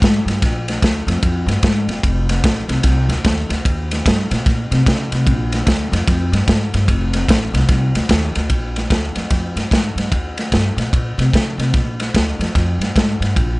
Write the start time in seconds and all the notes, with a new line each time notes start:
0.02 G#2, kick, snare, ride
0.25 G2, ride
0.30 snare
0.42 A#1, kick, snare, ride
0.68 snare, ride
0.82 D2, kick, snare, ride
1.07 F2, snare, ride
1.23 F2, kick, ride
1.46 G2, snare, ride
1.63 G#2, kick, snare, ride
1.88 G1, snare, ride
2.03 F1, kick, ride
2.29 snare, ride
2.44 A1, kick, snare, ride
2.68 C2, snare, ride
2.83 C2, kick, snare, ride
3.09 D2, snare, ride
3.25 D#2, kick, snare, ride
3.49 D2, snare, ride
3.65 D#2, kick, ride
3.91 snare, ride
4.06 G2, kick, snare, ride
4.31 A#2, snare, ride
4.46 A#2, kick, snare, ride
4.71 C3, snare, ride
4.86 C#3, kick, snare, ride
5.12 C3, snare, ride
5.26 A#1, kick, ride
5.52 snare, ride
5.66 D2, kick, snare, ride
5.92 F2, snare, ride
6.08 F2, kick, snare, ride
6.32 G2, snare, ride
6.48 G#2, kick, snare, ride
6.74 G2, snare, ride
6.88 F1, kick, ride
7.13 snare, ride
7.28 A1, kick, snare, ride
7.54 C2, snare, ride
7.68 C2, kick, snare, ride
7.95 D2, snare, ride
8.09 D#2, kick, snare, ride
8.35 D2, snare, ride
8.50 A#1, kick, ride
8.76 snare, ride
8.90 D2, kick, snare, ride
9.16 F2, snare, ride
9.30 F2, kick, snare, ride
9.56 G2, snare, ride
9.71 G#2, kick, snare, ride
9.96 G2, snare, ride
10.12 D#2, kick, ride
10.38 snare, ride
10.52 G2, kick, snare, ride
10.77 A#2, snare, ride
10.93 A#2, kick, ride
11.18 C3, snare, ride
11.33 C#3, kick, snare, ride
11.57 C3, snare, ride
11.74 A#1, kick, snare, ride
12.00 snare, ride
12.14 D2, kick, snare, ride
12.39 F2, snare, ride
12.55 F2, kick, snare, ride
12.79 G2, ride
12.83 snare
12.95 G#2, kick, snare, ride
13.20 G2, snare, ride
13.36 A#1, kick, ride